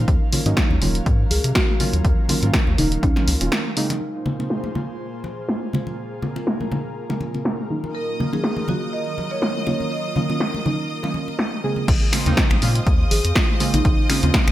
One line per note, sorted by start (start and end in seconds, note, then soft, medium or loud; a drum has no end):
0.00 0.30 D#3 medium
0.00 0.30 F#3 medium
0.00 0.30 A#3 medium
0.00 0.30 C#4 medium
0.00 0.30 D#4 loud
0.00 3.97 F5 medium
0.08 0.18 D#2 medium
0.08 3.97 F#3 medium
0.08 3.97 C#4 medium
0.08 3.97 A#4 medium
0.08 kick loud
0.08 closed hi-hat medium
0.32 0.43 D#3 medium
0.32 0.43 F#3 medium
0.32 0.43 A#3 medium
0.32 0.43 C#4 medium
0.32 0.43 F4 medium
0.32 open hi-hat loud
0.32 low conga medium
0.46 0.54 G#2 medium
0.46 0.79 D#3 loud
0.46 0.79 F#3 medium
0.46 0.79 A#3 medium
0.46 0.79 C#4 medium
0.46 0.79 D#4 loud
0.46 closed hi-hat medium
0.46 muted conga medium
0.57 kick loud
0.57 snare loud
0.57 closed hi-hat medium
0.70 0.79 D#2 medium
0.70 high conga medium
0.82 1.00 D#1 medium
0.82 0.99 D#3 medium
0.82 0.99 F#3 medium
0.82 0.99 A#3 medium
0.82 0.99 C#4 medium
0.82 0.99 F4 loud
0.82 open hi-hat medium
0.82 high conga medium
0.82 low conga medium
0.95 closed hi-hat medium
1.06 1.25 G#2 loud
1.06 kick loud
1.06 closed hi-hat medium
1.30 1.41 C#2 loud
1.30 1.49 G#4 medium
1.30 open hi-hat loud
1.30 high conga medium
1.44 1.52 C3 medium
1.44 closed hi-hat medium
1.55 1.91 F#4 medium
1.55 kick loud
1.55 snare loud
1.55 closed hi-hat medium
1.80 2.27 D#3 loud
1.80 2.27 F#3 medium
1.80 2.27 A#3 medium
1.80 2.27 C#4 medium
1.80 2.27 F4 loud
1.80 open hi-hat medium
1.80 muted conga medium
1.80 low conga medium
1.93 2.02 D#2 loud
1.93 closed hi-hat medium
1.93 high conga medium
2.05 2.14 D#2 medium
2.05 kick loud
2.05 closed hi-hat medium
2.29 2.39 D#3 medium
2.29 2.39 F#3 medium
2.29 2.39 A#3 medium
2.29 2.39 C#4 medium
2.29 2.39 F4 loud
2.29 open hi-hat loud
2.29 low conga loud
2.43 2.51 G#2 medium
2.43 2.76 D#3 medium
2.43 2.76 F#3 medium
2.43 2.76 A#3 medium
2.43 2.76 C#4 medium
2.43 2.76 F4 medium
2.43 closed hi-hat medium
2.43 muted conga medium
2.54 kick loud
2.54 snare loud
2.54 closed hi-hat medium
2.67 2.75 D#2 medium
2.67 high conga medium
2.78 2.97 D#1 loud
2.78 2.96 D#3 medium
2.78 2.96 F#3 medium
2.78 2.96 A#3 medium
2.78 2.96 C#4 medium
2.78 2.96 D#4 loud
2.78 2.96 D#4 medium
2.78 open hi-hat medium
2.78 high conga medium
2.78 low conga loud
2.92 closed hi-hat medium
3.03 3.13 C#2 loud
3.03 3.21 C#4 medium
3.03 kick loud
3.03 closed hi-hat medium
3.16 3.38 D#3 medium
3.16 3.38 F#3 medium
3.16 3.38 A#3 medium
3.16 3.38 C#4 medium
3.16 3.38 F4 medium
3.16 snare soft
3.16 muted conga medium
3.28 3.37 C#2 medium
3.28 open hi-hat loud
3.28 high conga medium
3.41 3.49 D#1 loud
3.41 3.74 D#3 medium
3.41 3.74 F#3 medium
3.41 3.74 A#3 medium
3.41 3.74 C#4 medium
3.41 3.74 F4 medium
3.41 closed hi-hat medium
3.41 muted conga soft
3.52 snare loud
3.52 closed hi-hat medium
3.77 4.23 C#3 medium
3.77 4.23 G#3 medium
3.77 4.23 A#3 medium
3.77 4.23 C4 medium
3.77 4.23 D#4 loud
3.77 open hi-hat medium
3.90 4.01 D#4 medium
3.90 closed hi-hat medium
3.90 muted conga medium
3.90 high conga medium
4.01 7.91 A#2 medium
4.01 11.84 A#3 medium
4.01 7.91 F4 medium
4.01 7.91 G#4 medium
4.01 5.96 C5 medium
4.01 crash medium
4.26 4.36 C#3 medium
4.26 4.36 G#3 medium
4.26 4.36 A#3 medium
4.26 4.36 C4 medium
4.26 4.36 F4 medium
4.26 low conga loud
4.39 4.72 C#3 loud
4.39 4.72 G#3 medium
4.39 4.72 A#3 medium
4.39 4.72 C4 medium
4.39 4.72 D#4 loud
4.39 muted conga soft
4.50 snare loud
4.64 high conga medium
4.75 4.93 C#3 medium
4.75 4.93 G#3 medium
4.75 4.93 A#3 medium
4.75 4.93 C4 medium
4.75 4.93 F4 medium
4.75 high conga medium
4.75 low conga medium
5.24 high conga medium
5.49 snare loud
5.73 6.20 C#3 loud
5.73 6.20 G#3 medium
5.73 6.20 A#3 medium
5.73 6.20 C4 medium
5.73 6.20 F4 loud
5.73 muted conga medium
5.73 low conga medium
5.87 high conga medium
5.98 11.84 A#4 medium
6.22 6.33 C#3 medium
6.22 6.33 G#3 medium
6.22 6.33 A#3 medium
6.22 6.33 C4 medium
6.22 6.33 F4 loud
6.22 low conga loud
6.36 6.69 C#3 medium
6.36 6.69 G#3 medium
6.36 6.69 A#3 medium
6.36 6.69 C4 medium
6.36 6.69 F4 medium
6.36 muted conga medium
6.47 snare loud
6.61 high conga medium
6.72 6.89 C#3 medium
6.72 6.89 G#3 medium
6.72 6.89 A#3 medium
6.72 6.89 C4 medium
6.72 6.89 D#4 medium
6.72 high conga medium
6.72 low conga loud
7.10 7.31 C#3 medium
7.10 7.31 G#3 medium
7.10 7.31 A#3 medium
7.10 7.31 C4 medium
7.10 7.31 F4 medium
7.10 snare soft
7.10 muted conga medium
7.21 high conga medium
7.34 7.67 C#3 medium
7.34 7.68 G#3 medium
7.34 7.68 A#3 medium
7.34 7.68 C4 medium
7.34 7.68 F4 medium
7.34 muted conga soft
7.45 snare loud
7.70 8.17 D#3 medium
7.70 8.17 F#3 medium
7.70 8.17 A#3 medium
7.70 8.17 C#4 medium
7.70 8.17 D#4 loud
7.84 high conga medium
7.95 11.84 D#3 medium
7.95 11.84 F#3 medium
7.95 11.84 F4 medium
7.95 8.30 A#4 loud
7.95 11.87 D#5 medium
7.95 11.87 D#6 medium
8.19 8.30 D#3 medium
8.19 8.30 F#3 medium
8.19 8.30 A#3 medium
8.19 8.30 C#4 medium
8.19 8.30 F4 medium
8.19 low conga medium
8.33 8.66 D#3 loud
8.33 8.66 F#3 medium
8.33 8.66 A#3 medium
8.33 8.66 C#4 medium
8.33 8.66 D#4 loud
8.33 8.70 G#4 loud
8.33 muted conga soft
8.44 snare loud
8.57 high conga medium
8.68 8.86 D#3 medium
8.68 8.86 F#3 medium
8.68 8.86 A#3 medium
8.68 8.86 C#4 medium
8.68 8.86 F4 loud
8.68 8.80 F#4 medium
8.68 high conga medium
8.68 low conga medium
8.93 9.32 D#5 loud
9.18 high conga medium
9.31 9.62 C#5 loud
9.42 snare loud
9.61 9.67 D#5 medium
9.67 10.13 D#3 loud
9.67 10.13 F#3 medium
9.67 10.13 A#3 medium
9.67 10.13 C#4 medium
9.67 10.13 F4 loud
9.67 9.78 C#5 medium
9.67 muted conga soft
9.67 low conga medium
9.80 high conga medium
9.92 10.61 D#5 medium
10.16 10.26 D#3 loud
10.16 10.26 F#3 medium
10.16 10.26 A#3 medium
10.16 10.26 C#4 medium
10.16 10.26 F4 loud
10.16 low conga medium
10.30 10.63 D#3 medium
10.30 10.63 F#3 medium
10.30 10.63 A#3 medium
10.30 10.63 C#4 medium
10.30 10.63 F4 medium
10.30 muted conga medium
10.40 snare loud
10.54 high conga medium
10.65 10.83 D#3 medium
10.65 10.83 F#3 medium
10.65 10.83 A#3 medium
10.65 10.83 C#4 medium
10.65 10.83 D#4 medium
10.65 high conga medium
10.65 low conga loud
11.03 11.25 D#3 medium
11.03 11.25 F#3 medium
11.03 11.25 A#3 medium
11.03 11.25 C#4 medium
11.03 11.25 F4 medium
11.03 snare soft
11.03 muted conga medium
11.14 high conga medium
11.28 muted conga soft
11.39 snare loud
11.64 12.10 C#3 medium
11.64 12.10 G#3 medium
11.64 12.10 A#3 medium
11.64 12.10 C4 medium
11.64 12.10 G#4 medium
11.76 high conga medium
11.88 11.98 A#1 medium
11.88 14.52 G#4 medium
11.88 14.52 C5 medium
11.88 14.52 D#5 medium
11.88 14.52 F5 medium
11.88 14.52 D#6 medium
11.88 kick loud
11.88 closed hi-hat medium
11.88 crash loud
12.13 12.23 C#3 medium
12.13 12.23 G#3 medium
12.13 12.23 A#3 medium
12.13 12.23 C4 medium
12.13 12.23 F4 medium
12.13 finger snap medium
12.13 snare soft
12.13 open hi-hat loud
12.26 12.34 D#2 medium
12.26 12.59 C#3 loud
12.26 12.59 G#3 medium
12.26 12.59 A#3 medium
12.26 12.59 C4 medium
12.26 12.59 D#4 loud
12.26 closed hi-hat medium
12.26 muted conga medium
12.26 low conga medium
12.37 kick loud
12.37 snare loud
12.37 closed hi-hat medium
12.50 12.59 A#1 medium
12.50 finger snap medium
12.50 high conga medium
12.62 12.81 A#2 medium
12.62 12.79 C#3 medium
12.62 12.79 G#3 medium
12.62 12.80 A#3 medium
12.62 12.80 C4 medium
12.62 12.80 F4 loud
12.62 open hi-hat loud
12.62 high conga medium
12.75 closed hi-hat medium
12.87 13.05 D#2 loud
12.87 kick loud
12.87 closed hi-hat medium
13.11 13.21 G#1 loud
13.11 13.29 G#4 loud
13.11 open hi-hat loud
13.11 high conga medium
13.25 13.33 F2 medium
13.25 closed hi-hat medium
13.36 13.71 F4 medium
13.36 kick loud
13.36 snare loud
13.36 closed hi-hat medium
13.60 14.07 C#3 loud
13.60 14.07 G#3 medium
13.60 14.07 A#3 medium
13.60 14.07 C4 medium
13.60 14.07 F4 loud
13.60 open hi-hat medium
13.60 muted conga medium
13.74 13.82 A#1 loud
13.74 13.90 D#4 medium
13.74 closed hi-hat medium
13.74 high conga medium
13.74 low conga loud
13.85 13.95 A#1 medium
13.85 kick loud
13.85 closed hi-hat medium
14.10 14.20 C#3 medium
14.10 14.20 G#3 medium
14.10 14.20 A#3 medium
14.10 14.20 C4 medium
14.10 14.27 C#4 medium
14.10 14.20 F4 loud
14.10 finger snap medium
14.10 open hi-hat loud
14.23 14.31 D#2 medium
14.23 14.52 C#3 medium
14.23 14.52 G#3 medium
14.23 14.52 A#3 medium
14.23 14.52 C4 medium
14.23 14.52 F4 medium
14.23 closed hi-hat medium
14.23 muted conga medium
14.23 low conga loud
14.34 kick loud
14.34 snare loud
14.34 closed hi-hat medium
14.48 14.52 A#1 medium
14.48 finger snap medium
14.48 high conga medium